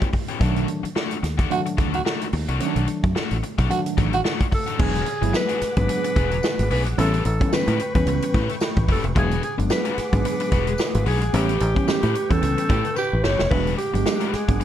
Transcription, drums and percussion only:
0.02 kick loud
0.02 closed hi-hat medium
0.13 kick medium
0.13 open hi-hat medium
0.28 closed hi-hat medium
0.41 kick loud
0.41 closed hi-hat medium
0.56 closed hi-hat soft
0.68 closed hi-hat medium
0.85 closed hi-hat medium
0.96 snare loud
1.11 closed hi-hat medium
1.24 snare soft
1.24 closed hi-hat medium
1.39 kick medium
1.39 closed hi-hat medium
1.51 closed hi-hat medium
1.66 closed hi-hat medium
1.78 kick loud
1.78 closed hi-hat medium
1.94 closed hi-hat medium
2.06 snare loud
2.21 closed hi-hat medium
2.33 open hi-hat medium
2.49 closed hi-hat medium
2.60 closed hi-hat medium
2.76 closed hi-hat medium
2.88 closed hi-hat medium
3.04 kick loud
3.04 closed hi-hat soft
3.16 snare loud
3.31 closed hi-hat medium
3.43 closed hi-hat medium
3.59 kick medium
3.59 closed hi-hat medium
3.71 closed hi-hat medium
3.86 closed hi-hat medium
3.98 kick loud
3.98 closed hi-hat medium
4.13 closed hi-hat medium
4.25 snare loud
4.40 kick medium
4.40 closed hi-hat medium
4.52 kick medium
4.52 open hi-hat medium
4.67 closed hi-hat medium
4.79 kick loud
4.79 crash loud
4.95 closed hi-hat soft
5.06 closed hi-hat medium
5.23 closed hi-hat medium
5.34 snare loud
5.34 tambourine medium
5.49 closed hi-hat medium
5.61 snare soft
5.61 closed hi-hat medium
5.77 kick loud
5.77 closed hi-hat medium
5.89 closed hi-hat loud
6.04 closed hi-hat medium
6.16 kick loud
6.16 closed hi-hat medium
6.31 closed hi-hat medium
6.43 snare loud
6.43 tambourine loud
6.59 closed hi-hat medium
6.71 open hi-hat medium
6.86 closed hi-hat medium
6.99 closed hi-hat loud
7.14 closed hi-hat soft
7.25 closed hi-hat medium
7.41 kick loud
7.41 closed hi-hat medium
7.53 snare loud
7.53 tambourine medium
7.67 closed hi-hat medium
7.80 closed hi-hat medium
7.95 kick loud
7.95 closed hi-hat medium
8.07 closed hi-hat medium
8.22 closed hi-hat medium
8.34 kick loud
8.34 closed hi-hat medium
8.49 closed hi-hat medium
8.61 snare loud
8.61 tambourine loud
8.76 kick loud
8.76 closed hi-hat medium
8.88 kick loud
8.88 open hi-hat medium
9.04 closed hi-hat medium
9.16 kick loud
9.16 closed hi-hat loud
9.31 closed hi-hat medium
9.43 closed hi-hat medium
9.59 closed hi-hat medium
9.70 snare loud
9.70 tambourine medium
9.85 closed hi-hat medium
9.98 snare soft
9.98 closed hi-hat medium
10.13 kick medium
10.13 closed hi-hat medium
10.25 closed hi-hat medium
10.40 closed hi-hat medium
10.52 kick loud
10.52 closed hi-hat medium
10.67 closed hi-hat medium
10.78 snare loud
10.78 tambourine loud
10.95 closed hi-hat medium
11.06 open hi-hat medium
11.21 closed hi-hat medium
11.34 closed hi-hat loud
11.49 closed hi-hat soft
11.60 closed hi-hat medium
11.76 kick loud
11.76 closed hi-hat soft
11.88 snare loud
11.88 tambourine loud
12.03 closed hi-hat medium
12.15 closed hi-hat medium
12.30 kick medium
12.30 closed hi-hat medium
12.43 closed hi-hat medium
12.58 closed hi-hat medium
12.70 kick loud
12.70 closed hi-hat medium
12.85 closed hi-hat medium
12.96 tambourine loud
13.24 snare loud
13.39 snare medium
13.51 kick loud
13.51 splash medium
13.67 closed hi-hat soft
13.78 closed hi-hat medium
13.95 closed hi-hat medium
14.06 snare loud
14.06 tambourine loud
14.21 closed hi-hat medium
14.34 snare soft
14.34 closed hi-hat medium
14.49 kick loud
14.49 closed hi-hat medium
14.61 closed hi-hat medium

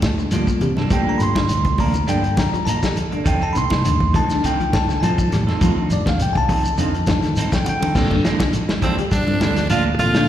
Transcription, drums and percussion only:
0.02 kick medium
0.02 snare medium
0.02 closed hi-hat soft
0.02 high conga medium
0.02 shekere medium
0.19 shekere soft
0.31 closed hi-hat medium
0.31 high conga medium
0.31 shekere medium
0.47 kick medium
0.47 shekere medium
0.61 closed hi-hat soft
0.61 low conga medium
0.61 shekere soft
0.77 snare soft
0.77 high conga medium
0.90 kick loud
0.90 closed hi-hat medium
0.90 high conga soft
0.90 shekere medium
1.20 closed hi-hat soft
1.20 shekere medium
1.36 kick medium
1.36 snare medium
1.36 high conga medium
1.36 shekere soft
1.49 closed hi-hat medium
1.49 high conga soft
1.49 shekere medium
1.65 kick medium
1.65 closed hi-hat soft
1.65 high conga medium
1.78 kick medium
1.78 open hi-hat medium
1.78 low conga medium
1.78 shekere soft
1.94 closed hi-hat soft
1.94 high conga medium
1.94 shekere medium
2.08 closed hi-hat medium
2.08 high conga soft
2.08 shekere medium
2.24 closed hi-hat soft
2.37 kick medium
2.37 snare medium
2.37 closed hi-hat medium
2.37 high conga medium
2.37 shekere medium
2.54 closed hi-hat soft
2.54 shekere soft
2.67 closed hi-hat medium
2.67 high conga medium
2.67 shekere medium
2.83 kick medium
2.83 snare medium
2.83 closed hi-hat soft
2.83 shekere medium
2.96 closed hi-hat medium
2.96 low conga medium
2.96 shekere soft
3.12 closed hi-hat soft
3.26 kick loud
3.26 closed hi-hat medium
3.26 shekere medium
3.42 closed hi-hat soft
3.55 closed hi-hat soft
3.55 shekere medium
3.70 kick medium
3.70 snare medium
3.70 high conga loud
3.70 shekere soft
3.84 closed hi-hat medium
3.84 high conga soft
3.84 shekere medium
4.00 kick medium
4.00 high conga medium
4.14 kick medium
4.14 closed hi-hat medium
4.14 low conga medium
4.14 shekere soft
4.30 snare soft
4.30 high conga medium
4.30 shekere medium
4.44 closed hi-hat medium
4.44 high conga soft
4.44 shekere medium
4.60 closed hi-hat soft
4.73 kick medium
4.73 snare medium
4.73 closed hi-hat soft
4.73 high conga medium
4.73 shekere medium
4.89 snare soft
4.89 shekere soft
5.03 closed hi-hat medium
5.03 high conga medium
5.03 shekere medium
5.18 kick medium
5.18 shekere medium
5.32 snare soft
5.32 closed hi-hat soft
5.32 low conga medium
5.32 shekere soft
5.48 snare soft
5.48 high conga medium
5.61 kick loud
5.61 closed hi-hat medium
5.61 high conga soft
5.61 shekere medium
5.90 closed hi-hat medium
5.90 shekere medium
6.06 kick medium
6.06 snare medium
6.06 high conga loud
6.06 shekere soft
6.19 closed hi-hat medium
6.19 high conga soft
6.19 shekere medium
6.35 kick medium
6.35 closed hi-hat soft
6.35 high conga medium
6.49 kick medium
6.49 open hi-hat medium
6.49 low conga medium
6.49 shekere soft
6.65 closed hi-hat soft
6.65 shekere medium
6.78 closed hi-hat medium
6.78 high conga soft
6.78 shekere medium
6.94 closed hi-hat soft
7.07 kick medium
7.07 snare medium
7.07 closed hi-hat medium
7.07 high conga medium
7.07 shekere medium
7.23 snare soft
7.23 closed hi-hat soft
7.23 shekere soft
7.36 closed hi-hat medium
7.36 high conga medium
7.36 shekere medium
7.52 kick medium
7.52 snare medium
7.52 closed hi-hat soft
7.52 high conga medium
7.52 shekere medium
7.66 closed hi-hat medium
7.66 low conga loud
7.66 shekere soft
7.82 closed hi-hat soft
7.82 low conga loud
7.95 kick loud
7.95 snare soft
7.95 crash medium
7.95 shekere medium
8.11 kick medium
8.11 high conga medium
8.25 snare medium
8.25 closed hi-hat soft
8.25 shekere soft
8.40 kick medium
8.40 snare medium
8.40 closed hi-hat soft
8.40 high conga loud
8.53 closed hi-hat medium
8.53 shekere medium
8.69 snare medium
8.69 high conga medium
8.82 kick medium
8.82 snare soft
8.82 closed hi-hat medium
8.82 high conga medium
8.82 low conga medium
8.82 shekere soft
8.98 closed hi-hat soft
9.12 kick medium
9.12 closed hi-hat medium
9.12 shekere medium
9.28 high conga medium
9.41 snare medium
9.41 closed hi-hat soft
9.41 high conga loud
9.41 shekere soft
9.56 snare soft
9.56 closed hi-hat medium
9.70 closed hi-hat medium
9.70 high conga loud
9.70 shekere medium
9.99 closed hi-hat medium
9.99 high conga medium
9.99 low conga medium
9.99 shekere soft
10.14 snare medium
10.14 closed hi-hat medium

